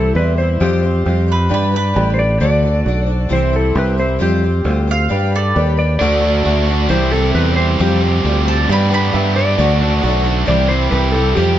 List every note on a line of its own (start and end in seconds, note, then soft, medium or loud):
0.00 0.12 C2 medium
0.00 0.14 G3 soft
0.00 0.16 C4 soft
0.00 0.11 E4 medium
0.00 0.16 E4 soft
0.00 0.11 G4 medium
0.00 2.39 G4 medium
0.00 0.16 A4 medium
0.00 0.12 C5 medium
0.00 0.16 C5 medium
0.00 1.50 C5 medium
0.00 0.61 E5 medium
0.00 0.60 C6 medium
0.14 0.57 E2 medium
0.14 0.38 G3 medium
0.14 0.39 C4 medium
0.14 0.56 E4 medium
0.14 0.38 E4 medium
0.14 0.57 G4 medium
0.14 0.38 B4 medium
0.14 0.37 C5 medium
0.14 0.57 D5 medium
0.38 0.60 G3 soft
0.38 0.60 C4 soft
0.38 0.61 E4 soft
0.38 0.61 C5 soft
0.38 0.62 C5 medium
0.60 1.02 F2 medium
0.60 0.83 F3 medium
0.60 0.84 G3 medium
0.60 0.84 C4 medium
0.60 1.02 F4 medium
0.60 0.83 F4 loud
0.60 1.02 G4 medium
0.60 1.47 G4 medium
0.60 1.02 C5 medium
0.60 0.81 C5 loud
0.60 1.51 F5 medium
0.60 1.51 C6 medium
0.83 1.06 C4 medium
0.83 1.06 F4 medium
0.83 1.06 C5 medium
1.05 1.48 F2 medium
1.05 1.28 G3 medium
1.05 1.29 C4 medium
1.05 1.47 F4 medium
1.05 1.27 F4 medium
1.05 1.47 G4 medium
1.05 1.47 C5 medium
1.05 1.26 C5 medium
1.27 1.49 C4 soft
1.27 1.50 F4 soft
1.27 1.50 C5 medium
1.32 1.52 B4 medium
1.49 1.93 G2 medium
1.49 1.73 G3 medium
1.49 1.73 D4 medium
1.49 1.91 G4 medium
1.49 1.73 G4 medium
1.49 1.92 B4 medium
1.49 1.71 B4 loud
1.49 2.41 B4 medium
1.49 1.92 D5 medium
1.49 3.30 D5 medium
1.49 2.41 B5 medium
1.54 1.74 B4 medium
1.72 1.94 D4 medium
1.72 1.95 G4 medium
1.72 1.95 B4 medium
1.76 2.08 B4 medium
1.94 2.38 A1 loud
1.94 2.17 G3 medium
1.94 2.18 D4 medium
1.94 2.37 G4 medium
1.94 2.17 G4 medium
1.94 2.37 B4 medium
1.94 2.15 B4 medium
1.94 2.37 D5 loud
2.14 2.40 B4 medium
2.14 2.19 C5 medium
2.18 2.40 D4 soft
2.18 2.41 G4 soft
2.18 2.40 D5 loud
2.40 2.82 D2 loud
2.40 2.63 D3 medium
2.40 2.63 A3 medium
2.40 2.64 D4 medium
2.40 2.82 F#4 medium
2.40 3.30 F#4 medium
2.40 2.64 F#4 medium
2.40 2.82 A4 medium
2.40 3.30 A4 medium
2.40 3.07 D5 medium
2.40 2.82 D5 medium
2.40 2.61 D5 medium
2.40 3.30 A5 medium
2.62 2.87 F#4 medium
2.62 2.85 D5 medium
2.67 2.86 D4 soft
2.85 3.28 B1 medium
2.85 3.08 A3 medium
2.85 3.08 D4 medium
2.85 3.26 F#4 medium
2.85 3.07 F#4 medium
2.85 3.27 A4 medium
2.85 3.27 D5 medium
2.85 3.05 D5 medium
3.07 3.30 D4 soft
3.07 3.30 F#4 medium
3.07 3.32 C5 medium
3.07 3.30 D5 medium
3.29 3.72 C2 medium
3.29 3.52 C3 medium
3.29 3.53 E3 medium
3.29 3.53 G3 medium
3.29 3.52 C4 medium
3.29 3.71 E4 medium
3.29 3.51 E4 medium
3.29 5.08 G4 medium
3.29 3.71 G4 medium
3.29 5.09 C5 medium
3.29 3.50 C5 loud
3.29 3.72 C5 medium
3.29 3.55 C5 medium
3.29 4.20 E5 medium
3.29 5.09 C6 medium
3.52 3.74 G3 soft
3.52 3.75 C4 soft
3.52 3.76 E4 medium
3.52 3.75 C5 medium
3.56 3.78 A4 medium
3.75 4.17 C2 loud
3.75 3.98 G3 medium
3.75 3.98 C4 medium
3.75 4.16 E4 medium
3.75 3.97 E4 medium
3.75 4.17 G4 medium
3.75 3.99 B4 medium
3.75 4.17 C5 medium
3.75 3.96 C5 medium
3.97 4.19 G3 soft
3.97 4.19 C4 soft
3.97 4.20 E4 medium
3.97 4.20 C5 soft
3.97 4.20 C5 medium
4.19 4.62 F2 medium
4.19 4.42 F3 medium
4.19 4.43 G3 medium
4.19 4.43 C4 medium
4.19 4.61 F4 medium
4.19 4.43 F4 medium
4.19 4.61 G4 medium
4.19 5.07 G4 medium
4.19 4.40 C5 medium
4.19 4.62 C5 medium
4.19 5.10 F5 medium
4.42 4.64 C4 soft
4.42 4.65 F4 medium
4.42 4.65 C5 medium
4.64 5.07 D2 medium
4.64 4.87 G3 medium
4.64 4.88 C4 medium
4.64 5.06 F4 medium
4.64 4.88 F4 medium
4.64 5.06 G4 medium
4.64 5.06 C5 medium
4.64 4.86 C5 medium
4.87 5.09 C4 soft
4.87 5.10 F4 medium
4.87 5.10 C5 medium
4.87 5.33 F5 medium
5.09 5.52 G2 medium
5.09 5.32 G3 medium
5.09 5.33 D4 loud
5.09 5.33 G4 medium
5.09 5.51 G4 medium
5.09 6.00 G4 medium
5.09 5.99 B4 medium
5.09 5.51 B4 medium
5.09 5.31 B4 medium
5.09 6.88 D5 medium
5.09 5.52 D5 medium
5.09 5.99 B5 medium
5.32 5.56 D4 medium
5.32 5.56 G4 medium
5.32 5.55 B4 medium
5.32 5.67 D5 medium
5.36 5.66 A4 medium
5.54 5.97 D#2 loud
5.54 5.78 G3 medium
5.54 5.78 D4 medium
5.54 5.95 G4 medium
5.54 5.78 G4 medium
5.54 5.96 B4 medium
5.54 5.76 B4 medium
5.54 5.96 D5 loud
5.77 6.00 D4 soft
5.77 6.01 G4 soft
5.77 6.00 B4 medium
5.77 5.98 D5 medium
5.99 6.42 D2 loud
5.99 6.23 D3 medium
5.99 6.23 A3 medium
5.99 6.23 D4 medium
5.99 6.41 F#4 medium
5.99 6.89 F#4 medium
5.99 6.22 F#4 medium
5.99 6.41 A4 medium
5.99 6.89 A4 medium
5.99 6.90 D5 loud
5.99 6.41 D5 medium
5.99 6.89 A5 medium
6.03 6.20 D5 medium
6.22 6.43 A3 medium
6.22 6.44 D4 soft
6.22 6.45 F#4 medium
6.22 6.44 D5 medium
6.44 6.87 D2 medium
6.44 6.88 D3 loud
6.44 6.67 A3 medium
6.44 6.67 D4 medium
6.44 6.86 F#4 medium
6.44 6.68 F#4 medium
6.44 6.86 A4 medium
6.44 6.66 D5 medium
6.44 6.86 E5 medium
6.67 6.90 A3 medium
6.67 6.89 D4 soft
6.67 6.90 F#4 medium
6.67 6.90 D5 medium
6.89 7.31 C2 medium
6.89 7.12 C3 medium
6.89 7.12 E3 medium
6.89 7.12 G3 medium
6.89 7.12 C4 medium
6.89 7.30 E4 medium
6.89 7.12 E4 medium
6.89 9.55 G4 medium
6.89 7.31 G4 medium
6.89 7.11 G4 loud
6.89 7.13 C5 medium
6.89 8.67 C5 medium
6.89 7.11 C5 medium
6.89 7.31 C5 medium
6.89 7.78 E5 medium
6.89 8.67 C6 medium
7.12 7.58 C3 medium
7.12 7.34 E3 medium
7.12 7.34 G3 soft
7.12 7.35 C4 soft
7.12 7.35 E4 soft
7.12 7.36 G4 medium
7.12 7.33 A4 medium
7.12 7.34 C5 medium
7.35 7.76 E2 medium
7.35 7.78 E3 medium
7.35 7.57 G3 medium
7.35 7.57 C4 medium
7.35 7.75 E4 medium
7.35 7.58 E4 medium
7.35 7.75 G4 medium
7.35 7.55 G4 medium
7.35 7.76 A4 medium
7.35 7.56 B4 medium
7.35 7.56 C5 medium
7.56 7.80 C4 soft
7.56 7.80 E4 soft
7.56 7.78 G4 medium
7.56 7.80 C5 medium
7.56 7.79 C5 soft
7.61 7.79 G3 soft
7.79 8.21 F2 loud
7.79 8.02 F3 medium
7.79 8.02 G3 medium
7.79 8.02 C4 medium
7.79 8.20 F4 medium
7.79 8.02 F4 medium
7.79 8.20 G4 medium
7.79 8.00 G4 loud
7.79 8.66 G4 medium
7.79 8.20 C5 medium
7.79 8.01 C5 medium
7.79 8.68 F5 medium
8.01 8.23 G3 medium
8.01 8.25 F4 medium
8.01 8.25 G4 medium
8.01 8.24 C5 medium
8.06 8.24 C4 soft
8.24 8.65 D2 medium
8.24 8.67 F3 medium
8.24 8.46 G3 medium
8.24 8.47 C4 medium
8.24 8.65 F4 medium
8.24 8.47 F4 medium
8.24 8.65 G4 medium
8.24 8.44 G4 loud
8.24 8.46 C5 medium
8.24 8.65 D5 medium
8.46 8.68 G3 medium
8.46 8.69 F4 medium
8.46 8.67 G4 medium
8.46 8.69 C5 medium
8.46 8.69 A5 medium
8.50 8.70 C4 soft
8.68 8.91 G2 loud
8.68 9.10 G2 medium
8.68 8.91 D3 loud
8.68 8.91 G3 medium
8.68 8.90 B3 loud
8.68 8.92 D4 medium
8.68 9.09 G4 medium
8.68 8.91 G4 medium
8.68 9.09 B4 medium
8.68 9.58 B4 medium
8.68 8.89 B4 loud
8.68 9.10 D5 medium
8.68 10.46 D5 medium
8.72 9.59 B5 medium
8.72 8.92 B5 medium
8.91 9.36 G2 medium
8.91 9.36 D3 medium
8.91 9.12 G3 medium
8.91 9.13 B3 medium
8.91 9.12 D4 soft
8.91 9.14 G4 medium
8.91 9.13 B4 medium
8.91 9.25 B5 medium
9.12 9.55 G2 loud
9.12 9.35 G3 medium
9.12 9.36 B3 medium
9.12 9.36 D4 medium
9.12 9.53 G4 medium
9.12 9.36 G4 medium
9.12 9.54 B4 medium
9.12 9.34 B4 medium
9.12 9.54 E5 loud
9.36 9.58 G3 medium
9.36 9.57 B3 medium
9.36 9.59 D4 soft
9.36 9.59 G4 soft
9.36 9.58 B4 medium
9.36 10.15 D5 loud
9.57 9.99 D2 medium
9.57 9.80 D3 medium
9.57 9.81 A3 loud
9.57 9.81 D4 loud
9.57 9.98 F#4 medium
9.57 10.46 F#4 medium
9.57 9.81 F#4 medium
9.57 9.98 A4 medium
9.57 10.46 A4 medium
9.57 9.79 A4 medium
9.57 9.98 D5 medium
9.57 10.47 A5 medium
9.80 10.02 A3 medium
9.80 10.02 D4 medium
9.80 10.04 F#4 soft
9.80 10.03 A4 medium
10.02 10.44 B1 medium
10.02 10.45 D3 medium
10.02 10.24 A3 medium
10.02 10.25 D4 medium
10.02 10.43 F#4 medium
10.02 10.25 F#4 medium
10.02 10.43 A4 medium
10.02 10.22 A4 medium
10.02 10.43 D5 loud
10.15 10.47 C5 loud
10.23 10.47 A3 medium
10.23 10.47 D4 soft
10.23 10.47 F#4 medium
10.23 10.46 A4 medium
10.46 10.89 C2 loud
10.46 10.69 C3 medium
10.46 10.69 E3 medium
10.46 10.69 G3 medium
10.46 11.59 C4 medium
10.46 10.70 C4 medium
10.46 11.36 E4 medium
10.46 10.88 E4 medium
10.46 10.69 E4 medium
10.46 11.59 G4 medium
10.46 10.88 G4 medium
10.46 10.68 G4 loud
10.46 10.67 C5 medium
10.46 10.88 C5 medium
10.46 10.70 D5 loud
10.46 11.59 G5 medium
10.68 11.15 C3 medium
10.68 10.90 E3 medium
10.68 10.90 G3 soft
10.68 10.91 C4 medium
10.68 10.92 E4 soft
10.68 10.92 G4 medium
10.68 10.91 C5 medium
10.91 11.33 C2 loud
10.91 11.34 E3 medium
10.91 11.14 G3 medium
10.91 11.14 C4 medium
10.91 11.32 E4 medium
10.91 11.14 E4 medium
10.91 11.32 G4 medium
10.91 11.12 G4 medium
10.91 11.12 B4 medium
10.91 11.32 B4 medium
10.91 11.13 C5 medium
11.12 11.36 C4 soft
11.12 11.37 E4 soft
11.12 11.35 G4 medium
11.12 11.36 A4 medium
11.12 11.36 C5 soft
11.17 11.35 G3 soft
11.35 11.59 F2 medium
11.35 11.58 F3 medium
11.35 11.58 G3 medium
11.35 11.59 C4 medium
11.35 11.59 F4 medium
11.35 11.59 G4 medium
11.35 11.59 C5 medium
11.35 11.57 C5 medium